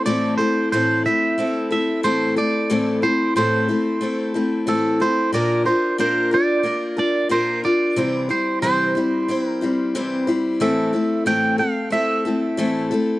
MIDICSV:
0, 0, Header, 1, 3, 480
1, 0, Start_track
1, 0, Tempo, 659486
1, 38, Time_signature, 4, 2, 24, 8
1, 9602, End_track
2, 0, Start_track
2, 0, Title_t, "Clean electric guitar"
2, 0, Program_c, 0, 27
2, 42, Note_on_c, 0, 74, 103
2, 271, Note_off_c, 0, 74, 0
2, 273, Note_on_c, 0, 72, 102
2, 517, Note_off_c, 0, 72, 0
2, 525, Note_on_c, 0, 72, 91
2, 767, Note_off_c, 0, 72, 0
2, 770, Note_on_c, 0, 76, 117
2, 1245, Note_off_c, 0, 76, 0
2, 1254, Note_on_c, 0, 76, 106
2, 1482, Note_off_c, 0, 76, 0
2, 1485, Note_on_c, 0, 72, 91
2, 1729, Note_off_c, 0, 72, 0
2, 1732, Note_on_c, 0, 74, 98
2, 2203, Note_off_c, 0, 74, 0
2, 2206, Note_on_c, 0, 72, 104
2, 2441, Note_off_c, 0, 72, 0
2, 2450, Note_on_c, 0, 72, 96
2, 3411, Note_on_c, 0, 69, 87
2, 3433, Note_off_c, 0, 72, 0
2, 3650, Note_on_c, 0, 72, 86
2, 3652, Note_off_c, 0, 69, 0
2, 3868, Note_off_c, 0, 72, 0
2, 3890, Note_on_c, 0, 74, 97
2, 4117, Note_off_c, 0, 74, 0
2, 4120, Note_on_c, 0, 72, 96
2, 4361, Note_off_c, 0, 72, 0
2, 4370, Note_on_c, 0, 72, 92
2, 4611, Note_off_c, 0, 72, 0
2, 4614, Note_on_c, 0, 74, 106
2, 5080, Note_off_c, 0, 74, 0
2, 5088, Note_on_c, 0, 74, 98
2, 5321, Note_off_c, 0, 74, 0
2, 5324, Note_on_c, 0, 72, 86
2, 5564, Note_off_c, 0, 72, 0
2, 5567, Note_on_c, 0, 74, 92
2, 6014, Note_off_c, 0, 74, 0
2, 6046, Note_on_c, 0, 72, 83
2, 6268, Note_off_c, 0, 72, 0
2, 6277, Note_on_c, 0, 72, 74
2, 6910, Note_off_c, 0, 72, 0
2, 6910, Note_on_c, 0, 70, 74
2, 7209, Note_off_c, 0, 70, 0
2, 7726, Note_on_c, 0, 76, 88
2, 8200, Note_off_c, 0, 76, 0
2, 8202, Note_on_c, 0, 79, 103
2, 8435, Note_off_c, 0, 79, 0
2, 8438, Note_on_c, 0, 77, 97
2, 8676, Note_off_c, 0, 77, 0
2, 8679, Note_on_c, 0, 76, 113
2, 9602, Note_off_c, 0, 76, 0
2, 9602, End_track
3, 0, Start_track
3, 0, Title_t, "Steel-string acoustic guitar"
3, 0, Program_c, 1, 25
3, 41, Note_on_c, 1, 45, 89
3, 44, Note_on_c, 1, 57, 87
3, 45, Note_on_c, 1, 52, 85
3, 51, Note_on_c, 1, 60, 85
3, 51, Note_on_c, 1, 64, 93
3, 55, Note_on_c, 1, 69, 89
3, 271, Note_off_c, 1, 69, 0
3, 275, Note_off_c, 1, 64, 0
3, 279, Note_off_c, 1, 45, 0
3, 280, Note_on_c, 1, 69, 58
3, 281, Note_off_c, 1, 57, 0
3, 282, Note_off_c, 1, 52, 0
3, 284, Note_on_c, 1, 64, 56
3, 285, Note_off_c, 1, 60, 0
3, 295, Note_on_c, 1, 60, 49
3, 298, Note_on_c, 1, 57, 49
3, 519, Note_off_c, 1, 69, 0
3, 521, Note_off_c, 1, 64, 0
3, 524, Note_off_c, 1, 57, 0
3, 526, Note_off_c, 1, 60, 0
3, 527, Note_on_c, 1, 45, 87
3, 532, Note_on_c, 1, 57, 81
3, 533, Note_on_c, 1, 52, 84
3, 536, Note_on_c, 1, 60, 84
3, 537, Note_on_c, 1, 64, 88
3, 539, Note_on_c, 1, 69, 91
3, 757, Note_off_c, 1, 69, 0
3, 763, Note_off_c, 1, 45, 0
3, 765, Note_off_c, 1, 57, 0
3, 766, Note_off_c, 1, 52, 0
3, 766, Note_off_c, 1, 64, 0
3, 766, Note_on_c, 1, 69, 53
3, 767, Note_off_c, 1, 60, 0
3, 775, Note_on_c, 1, 64, 48
3, 780, Note_on_c, 1, 60, 51
3, 788, Note_on_c, 1, 57, 49
3, 993, Note_off_c, 1, 57, 0
3, 999, Note_off_c, 1, 60, 0
3, 1002, Note_off_c, 1, 69, 0
3, 1002, Note_on_c, 1, 57, 62
3, 1006, Note_off_c, 1, 64, 0
3, 1008, Note_on_c, 1, 60, 68
3, 1015, Note_on_c, 1, 64, 68
3, 1020, Note_on_c, 1, 69, 70
3, 1232, Note_off_c, 1, 69, 0
3, 1240, Note_off_c, 1, 57, 0
3, 1241, Note_off_c, 1, 64, 0
3, 1241, Note_on_c, 1, 69, 54
3, 1243, Note_off_c, 1, 60, 0
3, 1250, Note_on_c, 1, 64, 52
3, 1254, Note_on_c, 1, 60, 48
3, 1260, Note_on_c, 1, 57, 41
3, 1477, Note_off_c, 1, 57, 0
3, 1478, Note_off_c, 1, 60, 0
3, 1479, Note_off_c, 1, 69, 0
3, 1479, Note_on_c, 1, 45, 81
3, 1483, Note_off_c, 1, 64, 0
3, 1484, Note_on_c, 1, 52, 73
3, 1486, Note_on_c, 1, 57, 78
3, 1487, Note_on_c, 1, 60, 78
3, 1491, Note_on_c, 1, 64, 83
3, 1493, Note_on_c, 1, 69, 84
3, 1711, Note_off_c, 1, 69, 0
3, 1717, Note_off_c, 1, 64, 0
3, 1719, Note_off_c, 1, 45, 0
3, 1720, Note_on_c, 1, 69, 64
3, 1721, Note_off_c, 1, 52, 0
3, 1722, Note_off_c, 1, 57, 0
3, 1723, Note_off_c, 1, 60, 0
3, 1726, Note_on_c, 1, 64, 55
3, 1735, Note_on_c, 1, 60, 53
3, 1739, Note_on_c, 1, 57, 49
3, 1959, Note_off_c, 1, 57, 0
3, 1959, Note_off_c, 1, 69, 0
3, 1962, Note_off_c, 1, 64, 0
3, 1962, Note_on_c, 1, 45, 86
3, 1963, Note_off_c, 1, 60, 0
3, 1966, Note_on_c, 1, 52, 83
3, 1968, Note_on_c, 1, 57, 89
3, 1971, Note_on_c, 1, 60, 81
3, 1973, Note_on_c, 1, 64, 92
3, 1979, Note_on_c, 1, 69, 85
3, 2190, Note_off_c, 1, 69, 0
3, 2195, Note_off_c, 1, 64, 0
3, 2199, Note_on_c, 1, 69, 55
3, 2200, Note_off_c, 1, 45, 0
3, 2201, Note_off_c, 1, 60, 0
3, 2202, Note_off_c, 1, 52, 0
3, 2203, Note_off_c, 1, 57, 0
3, 2204, Note_on_c, 1, 64, 53
3, 2210, Note_on_c, 1, 60, 45
3, 2218, Note_on_c, 1, 57, 50
3, 2439, Note_off_c, 1, 69, 0
3, 2441, Note_off_c, 1, 57, 0
3, 2441, Note_off_c, 1, 64, 0
3, 2443, Note_off_c, 1, 60, 0
3, 2443, Note_on_c, 1, 45, 85
3, 2448, Note_on_c, 1, 52, 80
3, 2450, Note_on_c, 1, 57, 83
3, 2451, Note_on_c, 1, 60, 88
3, 2456, Note_on_c, 1, 64, 95
3, 2461, Note_on_c, 1, 69, 96
3, 2673, Note_off_c, 1, 69, 0
3, 2678, Note_off_c, 1, 64, 0
3, 2681, Note_off_c, 1, 45, 0
3, 2682, Note_on_c, 1, 69, 55
3, 2683, Note_off_c, 1, 52, 0
3, 2684, Note_off_c, 1, 57, 0
3, 2685, Note_off_c, 1, 60, 0
3, 2687, Note_on_c, 1, 64, 53
3, 2695, Note_on_c, 1, 60, 46
3, 2702, Note_on_c, 1, 57, 47
3, 2908, Note_off_c, 1, 57, 0
3, 2916, Note_off_c, 1, 60, 0
3, 2917, Note_on_c, 1, 57, 68
3, 2920, Note_off_c, 1, 69, 0
3, 2923, Note_off_c, 1, 64, 0
3, 2925, Note_on_c, 1, 60, 63
3, 2934, Note_on_c, 1, 64, 67
3, 2936, Note_on_c, 1, 69, 71
3, 3151, Note_off_c, 1, 69, 0
3, 3158, Note_off_c, 1, 57, 0
3, 3160, Note_off_c, 1, 64, 0
3, 3160, Note_on_c, 1, 69, 58
3, 3162, Note_off_c, 1, 60, 0
3, 3169, Note_on_c, 1, 64, 54
3, 3173, Note_on_c, 1, 60, 57
3, 3178, Note_on_c, 1, 57, 48
3, 3396, Note_off_c, 1, 57, 0
3, 3396, Note_off_c, 1, 60, 0
3, 3397, Note_on_c, 1, 45, 69
3, 3398, Note_on_c, 1, 52, 83
3, 3400, Note_off_c, 1, 64, 0
3, 3400, Note_off_c, 1, 69, 0
3, 3405, Note_on_c, 1, 57, 82
3, 3405, Note_on_c, 1, 60, 79
3, 3409, Note_on_c, 1, 64, 77
3, 3409, Note_on_c, 1, 69, 81
3, 3630, Note_off_c, 1, 69, 0
3, 3638, Note_off_c, 1, 45, 0
3, 3639, Note_off_c, 1, 52, 0
3, 3639, Note_on_c, 1, 69, 58
3, 3642, Note_off_c, 1, 57, 0
3, 3642, Note_off_c, 1, 60, 0
3, 3642, Note_off_c, 1, 64, 0
3, 3651, Note_on_c, 1, 64, 62
3, 3653, Note_on_c, 1, 60, 55
3, 3660, Note_on_c, 1, 57, 50
3, 3876, Note_on_c, 1, 46, 84
3, 3879, Note_off_c, 1, 69, 0
3, 3881, Note_off_c, 1, 57, 0
3, 3884, Note_on_c, 1, 58, 85
3, 3885, Note_off_c, 1, 60, 0
3, 3885, Note_off_c, 1, 64, 0
3, 3888, Note_on_c, 1, 62, 92
3, 3892, Note_on_c, 1, 65, 87
3, 3896, Note_on_c, 1, 70, 88
3, 4107, Note_off_c, 1, 70, 0
3, 4115, Note_on_c, 1, 70, 57
3, 4117, Note_off_c, 1, 65, 0
3, 4118, Note_off_c, 1, 46, 0
3, 4121, Note_off_c, 1, 58, 0
3, 4123, Note_off_c, 1, 62, 0
3, 4126, Note_on_c, 1, 65, 49
3, 4134, Note_on_c, 1, 62, 49
3, 4355, Note_off_c, 1, 62, 0
3, 4355, Note_off_c, 1, 65, 0
3, 4355, Note_on_c, 1, 46, 84
3, 4357, Note_off_c, 1, 70, 0
3, 4361, Note_on_c, 1, 58, 89
3, 4364, Note_on_c, 1, 62, 89
3, 4364, Note_on_c, 1, 65, 80
3, 4370, Note_on_c, 1, 70, 88
3, 4585, Note_off_c, 1, 70, 0
3, 4594, Note_on_c, 1, 70, 52
3, 4595, Note_off_c, 1, 65, 0
3, 4597, Note_off_c, 1, 46, 0
3, 4600, Note_off_c, 1, 58, 0
3, 4602, Note_off_c, 1, 62, 0
3, 4604, Note_on_c, 1, 65, 53
3, 4614, Note_on_c, 1, 62, 44
3, 4825, Note_off_c, 1, 62, 0
3, 4828, Note_on_c, 1, 58, 60
3, 4832, Note_off_c, 1, 65, 0
3, 4834, Note_on_c, 1, 62, 68
3, 4836, Note_off_c, 1, 70, 0
3, 4841, Note_on_c, 1, 65, 67
3, 4848, Note_on_c, 1, 70, 67
3, 5062, Note_off_c, 1, 70, 0
3, 5071, Note_on_c, 1, 70, 54
3, 5073, Note_off_c, 1, 65, 0
3, 5074, Note_off_c, 1, 58, 0
3, 5076, Note_off_c, 1, 62, 0
3, 5081, Note_on_c, 1, 65, 47
3, 5088, Note_on_c, 1, 62, 46
3, 5308, Note_on_c, 1, 46, 82
3, 5312, Note_off_c, 1, 62, 0
3, 5312, Note_off_c, 1, 65, 0
3, 5314, Note_on_c, 1, 58, 83
3, 5315, Note_off_c, 1, 70, 0
3, 5321, Note_on_c, 1, 62, 75
3, 5321, Note_on_c, 1, 65, 89
3, 5327, Note_on_c, 1, 70, 89
3, 5549, Note_off_c, 1, 70, 0
3, 5554, Note_off_c, 1, 46, 0
3, 5557, Note_off_c, 1, 58, 0
3, 5557, Note_on_c, 1, 70, 56
3, 5560, Note_off_c, 1, 62, 0
3, 5560, Note_off_c, 1, 65, 0
3, 5570, Note_on_c, 1, 65, 56
3, 5579, Note_on_c, 1, 62, 49
3, 5796, Note_on_c, 1, 48, 76
3, 5796, Note_on_c, 1, 52, 85
3, 5798, Note_off_c, 1, 70, 0
3, 5800, Note_off_c, 1, 62, 0
3, 5802, Note_on_c, 1, 55, 84
3, 5803, Note_on_c, 1, 60, 84
3, 5805, Note_off_c, 1, 65, 0
3, 5810, Note_on_c, 1, 64, 95
3, 5810, Note_on_c, 1, 72, 89
3, 6024, Note_off_c, 1, 72, 0
3, 6032, Note_off_c, 1, 64, 0
3, 6032, Note_on_c, 1, 72, 55
3, 6038, Note_off_c, 1, 48, 0
3, 6038, Note_off_c, 1, 52, 0
3, 6038, Note_off_c, 1, 60, 0
3, 6040, Note_on_c, 1, 64, 57
3, 6041, Note_off_c, 1, 55, 0
3, 6047, Note_on_c, 1, 60, 49
3, 6051, Note_on_c, 1, 55, 47
3, 6272, Note_off_c, 1, 55, 0
3, 6273, Note_off_c, 1, 60, 0
3, 6275, Note_on_c, 1, 48, 83
3, 6275, Note_on_c, 1, 52, 88
3, 6276, Note_off_c, 1, 72, 0
3, 6277, Note_off_c, 1, 64, 0
3, 6281, Note_on_c, 1, 55, 82
3, 6282, Note_on_c, 1, 60, 88
3, 6286, Note_on_c, 1, 64, 91
3, 6290, Note_on_c, 1, 72, 99
3, 6505, Note_off_c, 1, 72, 0
3, 6514, Note_on_c, 1, 72, 50
3, 6517, Note_off_c, 1, 48, 0
3, 6517, Note_off_c, 1, 52, 0
3, 6518, Note_off_c, 1, 64, 0
3, 6520, Note_off_c, 1, 55, 0
3, 6520, Note_off_c, 1, 60, 0
3, 6526, Note_on_c, 1, 64, 55
3, 6529, Note_on_c, 1, 60, 53
3, 6534, Note_on_c, 1, 55, 47
3, 6748, Note_off_c, 1, 55, 0
3, 6753, Note_off_c, 1, 60, 0
3, 6756, Note_off_c, 1, 72, 0
3, 6757, Note_on_c, 1, 55, 64
3, 6761, Note_off_c, 1, 64, 0
3, 6762, Note_on_c, 1, 60, 68
3, 6770, Note_on_c, 1, 64, 72
3, 6777, Note_on_c, 1, 72, 73
3, 6987, Note_off_c, 1, 72, 0
3, 6995, Note_off_c, 1, 64, 0
3, 6996, Note_on_c, 1, 72, 62
3, 6998, Note_off_c, 1, 55, 0
3, 7000, Note_off_c, 1, 60, 0
3, 7003, Note_on_c, 1, 64, 66
3, 7012, Note_on_c, 1, 60, 51
3, 7017, Note_on_c, 1, 55, 47
3, 7237, Note_off_c, 1, 55, 0
3, 7237, Note_off_c, 1, 72, 0
3, 7241, Note_off_c, 1, 60, 0
3, 7241, Note_off_c, 1, 64, 0
3, 7241, Note_on_c, 1, 48, 83
3, 7242, Note_on_c, 1, 52, 89
3, 7246, Note_on_c, 1, 55, 92
3, 7249, Note_on_c, 1, 60, 84
3, 7252, Note_on_c, 1, 64, 89
3, 7256, Note_on_c, 1, 72, 95
3, 7467, Note_off_c, 1, 72, 0
3, 7475, Note_off_c, 1, 64, 0
3, 7476, Note_on_c, 1, 72, 67
3, 7479, Note_off_c, 1, 60, 0
3, 7480, Note_off_c, 1, 48, 0
3, 7480, Note_off_c, 1, 52, 0
3, 7482, Note_off_c, 1, 55, 0
3, 7484, Note_on_c, 1, 64, 66
3, 7488, Note_on_c, 1, 60, 56
3, 7495, Note_on_c, 1, 55, 55
3, 7715, Note_off_c, 1, 60, 0
3, 7715, Note_on_c, 1, 45, 84
3, 7717, Note_off_c, 1, 72, 0
3, 7718, Note_off_c, 1, 55, 0
3, 7719, Note_off_c, 1, 64, 0
3, 7719, Note_on_c, 1, 52, 78
3, 7721, Note_on_c, 1, 57, 88
3, 7724, Note_on_c, 1, 60, 84
3, 7728, Note_on_c, 1, 64, 88
3, 7729, Note_on_c, 1, 69, 90
3, 7944, Note_off_c, 1, 69, 0
3, 7951, Note_off_c, 1, 64, 0
3, 7953, Note_on_c, 1, 69, 53
3, 7957, Note_off_c, 1, 45, 0
3, 7958, Note_off_c, 1, 60, 0
3, 7959, Note_off_c, 1, 52, 0
3, 7960, Note_off_c, 1, 57, 0
3, 7960, Note_on_c, 1, 64, 53
3, 7967, Note_on_c, 1, 60, 50
3, 7975, Note_on_c, 1, 57, 45
3, 8192, Note_off_c, 1, 57, 0
3, 8193, Note_off_c, 1, 60, 0
3, 8194, Note_on_c, 1, 45, 82
3, 8194, Note_on_c, 1, 52, 83
3, 8196, Note_off_c, 1, 64, 0
3, 8196, Note_off_c, 1, 69, 0
3, 8200, Note_on_c, 1, 57, 92
3, 8202, Note_on_c, 1, 60, 88
3, 8204, Note_on_c, 1, 64, 90
3, 8206, Note_on_c, 1, 69, 91
3, 8420, Note_off_c, 1, 69, 0
3, 8428, Note_on_c, 1, 69, 60
3, 8433, Note_off_c, 1, 60, 0
3, 8436, Note_off_c, 1, 45, 0
3, 8436, Note_off_c, 1, 52, 0
3, 8438, Note_off_c, 1, 57, 0
3, 8441, Note_off_c, 1, 64, 0
3, 8442, Note_on_c, 1, 60, 49
3, 8446, Note_on_c, 1, 57, 48
3, 8656, Note_off_c, 1, 57, 0
3, 8664, Note_on_c, 1, 57, 64
3, 8667, Note_off_c, 1, 60, 0
3, 8673, Note_off_c, 1, 69, 0
3, 8675, Note_on_c, 1, 60, 75
3, 8681, Note_on_c, 1, 64, 69
3, 8685, Note_on_c, 1, 69, 67
3, 8907, Note_off_c, 1, 69, 0
3, 8911, Note_off_c, 1, 57, 0
3, 8914, Note_off_c, 1, 64, 0
3, 8916, Note_on_c, 1, 69, 56
3, 8917, Note_off_c, 1, 60, 0
3, 8922, Note_on_c, 1, 64, 55
3, 8931, Note_on_c, 1, 60, 48
3, 8939, Note_on_c, 1, 57, 44
3, 9150, Note_off_c, 1, 57, 0
3, 9151, Note_on_c, 1, 45, 82
3, 9153, Note_off_c, 1, 60, 0
3, 9157, Note_off_c, 1, 69, 0
3, 9157, Note_on_c, 1, 52, 68
3, 9158, Note_off_c, 1, 64, 0
3, 9159, Note_on_c, 1, 57, 86
3, 9162, Note_on_c, 1, 60, 76
3, 9165, Note_on_c, 1, 69, 86
3, 9166, Note_on_c, 1, 64, 82
3, 9386, Note_off_c, 1, 69, 0
3, 9392, Note_off_c, 1, 64, 0
3, 9395, Note_off_c, 1, 45, 0
3, 9395, Note_on_c, 1, 69, 68
3, 9397, Note_off_c, 1, 60, 0
3, 9398, Note_off_c, 1, 52, 0
3, 9399, Note_off_c, 1, 57, 0
3, 9401, Note_on_c, 1, 64, 62
3, 9406, Note_on_c, 1, 60, 56
3, 9416, Note_on_c, 1, 57, 54
3, 9602, Note_off_c, 1, 57, 0
3, 9602, Note_off_c, 1, 60, 0
3, 9602, Note_off_c, 1, 64, 0
3, 9602, Note_off_c, 1, 69, 0
3, 9602, End_track
0, 0, End_of_file